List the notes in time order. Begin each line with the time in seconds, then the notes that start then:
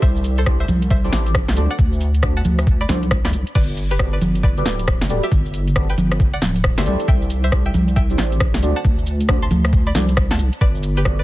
Already playing: E4 G4 A4 C5 D5
0.02 C2 C5 E5, kick, shaker
0.16 shaker
0.24 open hi-hat, shaker
0.38 A4 C5, closed hi-hat, shaker
0.46 E4 G4 A4 C5 D5, kick, cross-stick, shaker
0.60 C5 E5, closed hi-hat
0.68 C2, open hi-hat, high conga, shaker
0.82 closed hi-hat, shaker
0.90 C5 E5, kick, shaker
1.04 E4 G4 A4 C5 D5, closed hi-hat, shaker
1.13 A1, snare, open hi-hat, shaker
1.26 closed hi-hat, shaker
1.35 kick, cross-stick, shaker
1.48 C2, snare, closed hi-hat, shaker
1.57 D2 D4 F#4 A4 C5 D5, open hi-hat, shaker
1.70 D5 F#5, closed hi-hat, shaker
1.79 D2, kick, shaker
1.93 shaker
2.01 open hi-hat, shaker
2.14 closed hi-hat, shaker
2.23 D4 F#4 A4 C5 D5, kick, cross-stick, shaker
2.37 F#5 A5, closed hi-hat, shaker
2.45 D2, open hi-hat, high conga, shaker
2.59 cross-stick, closed hi-hat, shaker
2.67 kick, shaker
2.81 D5 B5, closed hi-hat, shaker
2.89 C2 D4 F#4 A4 C5 D5, snare, open hi-hat, high conga, shaker
3.03 closed hi-hat, shaker
3.11 kick, cross-stick, shaker
3.25 D2 D5 B5, snare, closed hi-hat, shaker
3.33 C2, open hi-hat, shaker
3.47 closed hi-hat, shaker
3.55 G1 B4 D5, kick, crash, shaker
3.69 shaker
3.77 open hi-hat, shaker
3.91 G4 B4, closed hi-hat, shaker
3.99 F#4 G4 A4 B4 D5, kick, cross-stick, shaker
4.13 B4 D5, closed hi-hat
4.21 G1, open hi-hat, high conga, shaker
4.35 closed hi-hat, shaker
4.43 B4 D5, kick, shaker
4.57 F#4 G4 A4 B4 D5, closed hi-hat, shaker
4.66 D1, snare, open hi-hat, shaker
4.79 closed hi-hat, shaker
4.88 kick, cross-stick, shaker
5.01 G1, snare, closed hi-hat, shaker
5.10 D1 F#4 G4 A4 B4 D5, open hi-hat, shaker
5.23 G4 E5, closed hi-hat, shaker
5.32 G1, kick, shaker
5.46 shaker
5.54 open hi-hat, shaker
5.68 closed hi-hat, shaker
5.76 F#4 G4 A4 B4 D5, kick, cross-stick, shaker
5.90 B4 G5, closed hi-hat, shaker
5.98 G1, open hi-hat, high conga, shaker
6.12 cross-stick, closed hi-hat, shaker
6.20 kick, shaker
6.34 D5 F#5, closed hi-hat, shaker
6.42 D1, snare, open hi-hat, high conga, shaker
6.56 closed hi-hat, shaker
6.64 kick, cross-stick, shaker
6.78 G1 F#4 G4 A4 B4 C5 D5 E5, snare, closed hi-hat, shaker
6.86 C2 E4 G4 A4 C5 D5, open hi-hat, shaker
7.00 closed hi-hat, shaker
7.08 C2 E5 G5, kick, shaker
7.22 shaker
7.30 open hi-hat, shaker
7.44 C5 E5, closed hi-hat, shaker
7.52 E4 G4 A4 C5 D5, kick, cross-stick, shaker
7.66 E5 G5, closed hi-hat
7.74 C2, open hi-hat, high conga, shaker
7.88 closed hi-hat, shaker
7.96 E5 G5, kick, shaker
8.10 E4 G4 A4 C5 D5, closed hi-hat, shaker
8.18 A1, snare, open hi-hat, shaker
8.32 closed hi-hat, shaker
8.40 kick, cross-stick, shaker
8.54 C2, snare, closed hi-hat, shaker
8.63 D2 D4 F#4 A4 C5 D5, open hi-hat, shaker
8.76 F#5 A5, closed hi-hat, shaker
8.85 D2, kick, shaker
8.98 shaker
9.07 open hi-hat, shaker
9.21 closed hi-hat, shaker
9.29 D4 F#4 A4 C5 D5, kick, cross-stick, shaker
9.42 A5 C6, closed hi-hat, shaker
9.51 D2, open hi-hat, high conga, shaker
9.65 cross-stick, closed hi-hat, shaker
9.73 kick, shaker
9.87 D5 B5, closed hi-hat, shaker
9.95 C2 D4 F#4 A4 C5 D5, snare, open hi-hat, high conga, shaker
10.09 closed hi-hat, shaker
10.17 kick, cross-stick, shaker
10.31 D2 F#5 A5, snare, closed hi-hat, shaker
10.39 C2, open hi-hat, shaker
10.53 closed hi-hat, shaker
10.61 G1 B4 D5, kick, shaker
10.75 shaker
10.83 open hi-hat, shaker
10.97 G4 B4, closed hi-hat, shaker
11.05 F#4 G4 A4 B4 D5, kick, cross-stick, shaker
11.19 B4 D5, closed hi-hat